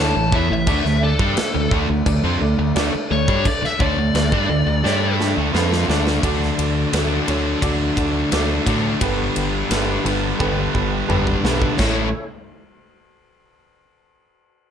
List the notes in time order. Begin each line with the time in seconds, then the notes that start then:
Already playing: D2 D3 A3 D4 E4 A4 C#5
0.00 A5
0.15 A1 A2 E3
0.32 E2 E3 B3 E4 A4 C#5 E5, kick
0.50 A1 A2 E3 E5
0.66 D2 D3 A3 D4 A4 D5, kick, crash
0.85 D2 D3 A3, snare
1.01 D4 A4 D5
1.19 G2 G3 D4, kick
1.36 D4 A4 D5, muted distorted electric guitar stroke, muted overdriven electric guitar stroke, muted fingered electric bass stroke, snare, crash
1.55 D2 D3 A3
1.71 D2 D3 A3 D4 A4 D5, kick
1.89 D2 D3 A3
2.05 D2 D3 A3 D4 A4 D5, kick, crash
2.24 F2 F3 C4
2.40 D2 D3 A3 D4 A4 D5
2.58 D2 D3 A3
2.74 D2 D3 A3 D4 A4 D5, snare, crash
2.93 muted distorted electric guitar stroke, muted overdriven electric guitar stroke, muted fingered electric bass stroke
3.10 D2 D3 A3 D4 A4 C#5 D5
3.28 G2 G3 D4, kick
3.44 A3 D4 A4 D5, muted fingered electric bass stroke, muted overdriven electric guitar stroke, muted distorted electric guitar stroke, kick, crash
3.62 E5, muted fingered electric bass stroke, muted distorted electric guitar stroke, muted overdriven electric guitar stroke, snare
3.79 D2 D3 A3 D4 A4 C#5 D5, kick
3.97 D2 D3 A3
4.14 D2 D3 A3 D4 A4 D5, snare, crash
4.32 G2 G3 D4, kick
4.49 D2 D3 A3 D4 A4 D5
4.66 D2 D3 A3
4.84 G2 G3 D4 G4 A4 C#5, snare
5.20 D4 A4 D5 A5, snare
5.36 D2 D3 A3 G5
5.53 F2 F3 C4 D4 F4 A4 B4 F#5, snare
5.72 snare
5.88 D2 D3 A3 D4 A4 D5, snare
6.07 snare
6.22 D2 D3 F#3 A3 D4 F#4 A4 D5, kick, ride
6.42 snare
6.58 D2 F#4 A4 D5, ride
6.92 D2 D3 F#3 A3 D4 F#4 A4 D5, snare, ride
7.27 D2 D3 F#3 A3 D4 F#4 A4 C#5, ride
7.62 D2 D3 F#3 A3 D4 F#4 A4 D5, kick, ride
7.96 D2 F#4 A4 D5, kick, ride
8.32 D2 D3 F#3 A3 D4 F#4 A4 D5, snare, ride
8.66 A2 D3 F#3 A3 D4 F#4 A4 D5, kick, ride
9.01 G1 G2 D3 G3 B3 D4 G4 A4 B4, kick, ride
9.35 G1 G4 A4 B4, ride
9.70 G1 G2 D3 G3 B3 D4 G4 A4 B4, snare, ride
10.04 G1 G2 D3 G3 B3 D4 G4 A4 B4, ride
10.39 G1 G2 D3 G3 B3 D4 G4 A4 B4, kick
10.73 G1 G4 A4 B4 B5, kick
10.91 G5
11.07 G1 G2 D3 G3 G4 A4 B4 E5, mid tom
11.12 B3 D4
11.26 F#5, kick
11.43 B1 G2 D3 G3 B3 D4 G4 A4 B4, snare
11.62 kick
11.78 A1 A2 E3 A3 C#4 E4 A4 C#5, kick, snare, china